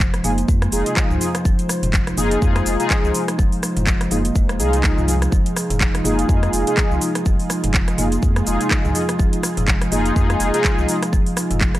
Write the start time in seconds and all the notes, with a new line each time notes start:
Already playing: F1 G#3 D#4 F4 C5
0.00 F3, kick, clap, cabasa
0.14 cross-stick, closed hi-hat, cabasa
0.24 F1 A#3 D#4 F4 G#4, mid tom, open hi-hat, cabasa
0.38 closed hi-hat, cabasa
0.48 F2 G#3, kick, cabasa
0.62 cross-stick, closed hi-hat, cabasa
0.72 F1 D#4 F4 G#4, open hi-hat, cabasa
0.86 C3, closed hi-hat, cabasa
0.97 F3, kick, cross-stick, clap, cabasa
1.10 C2, mid tom, cabasa
1.21 F3 D#4 F4 G#4, open hi-hat, cabasa
1.35 F3, cross-stick, closed hi-hat, cabasa
1.45 F1 F3, kick, cabasa
1.59 closed hi-hat, cabasa
1.69 F3, cross-stick, open hi-hat, cabasa
1.83 F1 C3, closed hi-hat, mid tom, cabasa
1.94 F3, kick, clap, cabasa
2.07 cross-stick, closed hi-hat, cabasa
2.17 F1 A#3 D#4 F4 G#4, mid tom, open hi-hat, cabasa
2.31 closed hi-hat, cabasa
2.42 F2 G#3 D#4 F4 G#4, kick, cabasa
2.56 cross-stick, closed hi-hat, cabasa
2.66 F1, open hi-hat, cabasa
2.80 C3 D#4 F4 G#4, closed hi-hat, cabasa
2.90 F3, kick, cross-stick, clap, cabasa
3.04 C2, cabasa
3.14 F3 D#4 F4 G#4, open hi-hat, cabasa
3.28 F3, cross-stick, closed hi-hat, cabasa
3.38 F1 F3, kick, cabasa
3.52 open hi-hat, cabasa
3.63 F3, cross-stick, open hi-hat, cabasa
3.76 F1 C3, closed hi-hat, mid tom, cabasa
3.87 F3, kick, clap, cabasa
4.01 cross-stick, closed hi-hat, cabasa
4.11 F1 A#3 D#4 F4 G#4, mid tom, open hi-hat, cabasa
4.25 closed hi-hat, cabasa
4.35 F1 G#3, kick, cabasa
4.49 cross-stick, closed hi-hat, cabasa
4.59 C2 D#4 F4 G#4, open hi-hat, cabasa
4.73 C3, closed hi-hat, cabasa
4.83 F3, kick, cross-stick, clap, cabasa
4.97 C2, mid tom, cabasa
5.08 F3 D#4 F4 G#4, open hi-hat, cabasa
5.21 F3, cross-stick, closed hi-hat, cabasa
5.32 F1 F3 G#4, kick, cabasa
5.46 closed hi-hat, cabasa
5.56 F3, cross-stick, open hi-hat, cabasa
5.70 F1 C3, closed hi-hat, mid tom, cabasa
5.80 F3, kick, clap, cabasa
5.95 cross-stick, closed hi-hat, cabasa
6.04 F1 A#3 D#4 F4 G#4, mid tom, open hi-hat, cabasa
6.19 closed hi-hat, cabasa
6.29 F2 G#3 D#4 F4 G#4, kick, cabasa
6.43 cross-stick, closed hi-hat, cabasa
6.53 F1, open hi-hat, cabasa
6.67 C3 D#4 F4 G#4, closed hi-hat, cabasa
6.77 F3, kick, cross-stick, clap, cabasa
6.91 C2, cabasa
7.01 F3 D#4 F4 G#4, open hi-hat, cabasa
7.15 F3, cross-stick, closed hi-hat, cabasa
7.26 F1 F3, kick, cabasa
7.39 open hi-hat, cabasa
7.50 F3, cross-stick, open hi-hat, cabasa
7.64 F1 C3, closed hi-hat, mid tom, cabasa
7.74 F3, kick, clap, cabasa
7.88 cross-stick, closed hi-hat, cabasa
7.98 F1 A#3 D#4 F4 G#4, mid tom, open hi-hat, cabasa
8.12 closed hi-hat, cabasa
8.22 F2 G#3, kick, cabasa
8.36 cross-stick, closed hi-hat, cabasa
8.47 F1 D#4 F4 G#4, open hi-hat, cabasa
8.60 C3, closed hi-hat, cabasa
8.71 F3, kick, cross-stick, clap, cabasa
8.84 C2, mid tom, cabasa
8.95 F3 D#4 F4 G#4, open hi-hat, cabasa
9.09 F3, cross-stick, closed hi-hat, cabasa
9.19 F1 F3, kick, cabasa
9.33 closed hi-hat, cabasa
9.43 F3, cross-stick, open hi-hat, cabasa
9.57 F1 C3, closed hi-hat, mid tom, cabasa
9.67 F3, kick, clap, cabasa
9.81 cross-stick, closed hi-hat, cabasa
9.92 F1 A#3 D#4 F4 G#4, mid tom, open hi-hat, cabasa
10.06 closed hi-hat, cabasa
10.16 F2 G#3 D#4 F4 G#4, kick, cabasa
10.30 cross-stick, closed hi-hat, cabasa
10.40 F1, open hi-hat, cabasa
10.54 C3 D#4 F4 G#4, closed hi-hat, cabasa
10.64 F3, kick, cross-stick, clap, cabasa
10.78 C2, cabasa
10.89 F3 D#4 F4 G#4, open hi-hat, cabasa
11.02 F3, cross-stick, closed hi-hat, cabasa
11.13 F1 F3, kick, cabasa
11.26 open hi-hat, cabasa
11.37 F3, cross-stick, open hi-hat, cabasa
11.51 F1 C3, closed hi-hat, mid tom, cabasa
11.61 F3, kick, clap, cabasa
11.75 cross-stick, closed hi-hat, cabasa